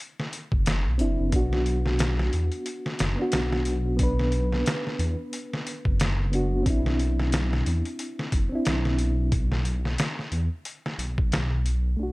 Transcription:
0.20 snare
0.33 closed hi-hat
0.52 detuned saw bass F#1, kick
0.66 snare, closed hi-hat
0.86 detuned saw bass B1
0.98 detuned saw bass F#1, reed electric piano C4 D4 E4, closed hi-hat
1.20 detuned saw bass F#1
1.30 detuned saw bass B1, reed electric piano B3 D4, kick, closed hi-hat
1.36 reed electric piano F#4
1.53 snare
1.66 closed hi-hat
1.86 snare
1.99 snare, closed hi-hat
2.19 snare
2.33 detuned saw bass E2, closed hi-hat
2.52 closed hi-hat
2.66 closed hi-hat
2.86 snare
2.99 detuned saw bass F#1, snare, closed hi-hat
3.16 reed electric piano B3 D4
3.22 reed electric piano F#4
3.32 detuned saw bass B1, snare, closed hi-hat
3.52 snare
3.65 closed hi-hat
3.97 reed electric piano B3 D4, kick, closed hi-hat
4.03 reed electric piano B4
4.19 snare
4.32 closed hi-hat
4.52 snare
4.66 snare, closed hi-hat
4.87 snare
4.99 detuned saw bass E2, closed hi-hat
5.33 closed hi-hat
5.53 snare
5.67 closed hi-hat
5.85 detuned saw bass F#1, kick
6.00 snare, closed hi-hat
6.32 reed electric piano B3 D4 F#4, closed hi-hat
6.63 detuned saw bass B1, reed electric piano C4 D4, kick, closed hi-hat
6.70 reed electric piano E4
6.86 snare
6.99 closed hi-hat
7.19 snare
7.32 snare, closed hi-hat
7.53 snare
7.66 detuned saw bass E2, closed hi-hat
7.85 closed hi-hat
7.99 closed hi-hat
8.19 snare
8.32 detuned saw bass F#1, kick, closed hi-hat
8.49 reed electric piano C4 D4
8.55 reed electric piano E4
8.65 detuned saw bass B1, snare, closed hi-hat
8.85 snare
8.99 closed hi-hat
9.32 kick, closed hi-hat
9.52 snare
9.65 closed hi-hat
9.85 snare
9.98 snare, closed hi-hat
10.19 snare
10.32 detuned saw bass E2, closed hi-hat
10.65 closed hi-hat
10.86 snare
10.98 detuned saw bass B1, closed hi-hat
11.18 kick
11.32 snare, closed hi-hat
11.66 closed hi-hat
11.97 detuned saw bass B1, reed electric piano A3 D4, closed hi-hat
12.03 reed electric piano F#4

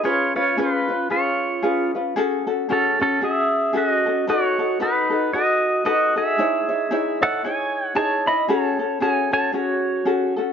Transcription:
0.03 ukulele C#4 F4 G#4 B4, pedal steel guitar F4 C#5
0.36 ukulele C#4 F4 B4, pedal steel guitar F4 C#5
0.57 ukulele C#4 F4 G#4 B4, pedal steel guitar F4 B4
0.88 ukulele C#4 F4 B4
1.10 ukulele C#4 F4 G#4 B4, pedal steel guitar F4 C#5
1.63 ukulele C#4 F4 G#4 B4
1.95 ukulele C#4 F4 B4
2.16 ukulele C#4 F#4 G#4 A4
2.47 ukulele C#4 F#4 A4
2.69 ukulele C#4 F#4 G#4 A4, pedal steel guitar C#4 A4
3.00 pedal steel guitar C#4 A4, ukulele C#4 F#4 A4
3.21 ukulele C#4 F#4 G#4, pedal steel guitar G#4 E5
3.73 ukulele C#4 F#4 G#4 A4
3.77 pedal steel guitar F#4 D#5
4.06 ukulele C#4 F#4 A4
4.27 ukulele D#4 F#4 A4 B4, pedal steel guitar F#4 C#5
4.59 ukulele D#4 F#4 A4
4.80 ukulele D#4 F#4 A4 B4, pedal steel guitar D#4 B4
5.10 ukulele D#4 F#4 A4
5.33 ukulele D#4 F#4 A4 B4, pedal steel guitar F#4 D#5
5.85 ukulele D#4 F#4 A4 B4, pedal steel guitar F#4 D#5
6.16 ukulele D#4 F#4 A4, pedal steel guitar G#4 E5
6.38 ukulele D#4 E4 G#4 C#5
6.69 ukulele D#4 E4 C#5
6.91 ukulele D#4 E4 G#4 C#5
7.21 ukulele D#4 E4 C#5, pedal steel guitar A4 F#5
7.44 ukulele D#4 E4 G#4 C#5, pedal steel guitar C#5 G#5
7.88 pedal steel guitar F#5
7.95 ukulele D#4 E4 G#4 C#5, pedal steel guitar C#5 A5
8.27 ukulele D#4 E4 C#5, pedal steel guitar D#5 B5
8.48 ukulele C#4 F#4 G#4 A4, pedal steel guitar C#5 A5
8.79 ukulele C#4 F#4 A4
9.00 ukulele C#4 F#4 G#4 A4, pedal steel guitar C#5 G#5
9.32 ukulele C#4 F#4 A4, pedal steel guitar C#5 A5
9.52 ukulele C#4 F#4 G#4 A4, pedal steel guitar F#4 C#5
10.05 ukulele C#4 F#4 G#4 A4
10.36 ukulele C#4 F#4 A4

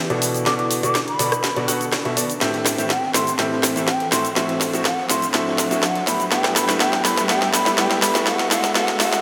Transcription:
Already playing: ambient pad E4 D5 G5, riser
0.10 grand piano B2 B3 F#4 A4 D5, closed hi-hat
0.22 ambient pad D4, open hi-hat, shaker
0.34 closed hi-hat, shaker
0.40 ambient pad B4
0.46 grand piano B2 B3 F#4 A4 D5, flute D6, snare, closed hi-hat, shaker
0.59 flute D6, closed hi-hat
0.71 open hi-hat, shaker
0.83 grand piano B2 B3 F#4 A4 D5, flute D6, closed hi-hat, shaker
0.88 ambient pad A5
0.95 snare, closed hi-hat, shaker
1.08 flute B5, closed hi-hat
1.19 grand piano B2 B3 F#4 A4 D5, open hi-hat, shaker
1.32 cross-stick, closed hi-hat, shaker
1.44 snare, closed hi-hat, shaker
1.56 grand piano B2 B3 F#4 A4 D5, closed hi-hat
1.68 grand piano B2 B3 F#4 A4 F#5, open hi-hat, shaker
1.81 closed hi-hat, shaker
1.93 snare, closed hi-hat, shaker
2.05 grand piano B2 B3 F#4 A4 E5, closed hi-hat
2.17 grand piano B3 F#4 A4 D5, open hi-hat, shaker
2.30 closed hi-hat, shaker
2.41 grand piano A2 C4 G4 A4 E5, ambient pad C4, snare, closed hi-hat, shaker
2.54 closed hi-hat
2.66 snare, open hi-hat, shaker
2.78 grand piano A2 C4 G4 A4 E5, ambient pad A4, closed hi-hat, shaker
2.90 flute G5, snare, closed hi-hat, shaker
3.14 grand piano A2 C4 G4 A4 E5, ambient pad G5, flute C6, snare, open hi-hat, shaker
3.27 closed hi-hat, shaker
3.39 grand piano A2 C4 G4 A4 E5, snare, closed hi-hat, shaker
3.63 snare, open hi-hat, shaker
3.76 grand piano A2 C4 G4 A4 E5, closed hi-hat, shaker
3.88 flute G5, snare, closed hi-hat, shaker
4.00 closed hi-hat
4.12 grand piano A2 C4 F#4 A4 E5, ambient pad D4, flute C6, snare, open hi-hat, shaker
4.25 closed hi-hat, shaker
4.34 grand piano A2 C4 F#4 A4 E5, ambient pad C5, snare, closed hi-hat, shaker
4.49 closed hi-hat
4.61 snare, open hi-hat, shaker
4.73 grand piano A2 C4 F#4 A4 E5, closed hi-hat, shaker
4.85 flute F#5, snare, closed hi-hat, shaker
5.00 ambient pad F#5
5.09 grand piano A2 C4 F#4 A4 E5, flute C6, snare, open hi-hat, shaker
5.22 closed hi-hat, shaker
5.34 grand piano A2 C4 F#4 A4 E5, snare, closed hi-hat, shaker
5.58 snare, open hi-hat, shaker
5.71 grand piano A2 C4 F#4 A4 E5, closed hi-hat, shaker
5.83 flute F#5, snare, closed hi-hat, shaker
5.95 closed hi-hat
6.07 grand piano A2 B3 G4 A4 E5, ambient pad E4, flute B5, snare, open hi-hat, shaker
6.20 closed hi-hat, shaker
6.31 grand piano A2 B3 G4 A4 E5, flute G5, snare, closed hi-hat, shaker
6.44 snare, closed hi-hat
6.56 flute B5, snare, open hi-hat, shaker
6.69 grand piano A2 B3 G4 A4 E5, snare, closed hi-hat, shaker
6.79 grand piano A2 B3 G4 A4 E5, ambient pad D5, flute G5, snare, closed hi-hat, shaker
6.93 ambient pad G5, snare
7.05 flute B5, snare, open hi-hat, shaker
7.17 grand piano A2 B3 G4 A4 E5, snare, closed hi-hat, shaker
7.29 grand piano A2 B3 G4 A4 E5, flute G5, snare, closed hi-hat, shaker
7.42 snare
7.53 flute B5, snare, open hi-hat, shaker
7.66 grand piano A2 B3 G4 A4 E5, snare, closed hi-hat, shaker
7.78 grand piano A2 B3 G4 A4 E5, flute G5, snare, closed hi-hat, shaker
7.91 snare, closed hi-hat
8.02 ambient pad D4, flute B5, snare, open hi-hat, shaker
8.15 grand piano A2 B3 F#4 A4 E5, snare, closed hi-hat, shaker
8.27 grand piano A2 B3 F#4 A4 E5, flute F#5, snare, closed hi-hat, shaker
8.39 snare, closed hi-hat
8.51 grand piano A2 B3 F#4 A4 E5, flute F#5, snare, open hi-hat, shaker
8.64 snare, closed hi-hat, shaker
8.75 grand piano A2 B3 F#4 A4 E5, ambient pad B4, flute F#5, snare, closed hi-hat, shaker
8.88 snare, closed hi-hat
9.00 grand piano A2 B3 F#4 A4 E5, flute F#5, snare, open hi-hat, shaker
9.13 snare, closed hi-hat, shaker

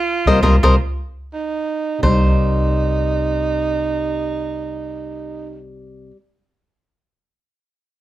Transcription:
Already playing: tenor saxophone F4
0.26 fingered electric bass C2, nylon-string guitar G3 A#3 C4, cavaquinho A#4 C5 D#5, surdo
0.43 fingered electric bass C2, nylon-string guitar G3 A#3 C4, cavaquinho A#4 C5 D#5, surdo
0.63 fingered electric bass C2, nylon-string guitar G3 A#3 C4, cavaquinho A#4 C5 D#5, surdo
1.33 tenor saxophone D#4
1.99 nylon-string guitar C3
2.03 fingered electric bass C2, nylon-string guitar G3, tenor saxophone D#4, cavaquinho C5, surdo
2.09 nylon-string guitar A#3
2.13 nylon-string guitar D#4

